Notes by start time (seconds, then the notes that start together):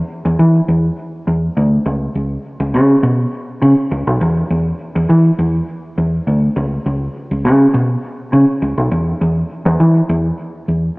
0.25 E2
0.39 E3
0.68 E2
1.27 E2
1.57 D2
1.86 C#2
2.15 C#2
2.60 C#2
2.74 C#3
3.03 B2
3.62 C#3
3.91 C#2
4.07 B1
4.21 E2
4.50 E2
4.96 E2
5.09 E3
5.39 E2
5.98 E2
6.27 D2
6.56 C#2
6.86 C#2
7.31 C#2
7.45 C#3
7.74 B2
8.33 C#3
8.62 C#2
8.78 B1
8.91 E2
9.21 E2
9.66 E2
9.80 E3
10.09 E2
10.68 E2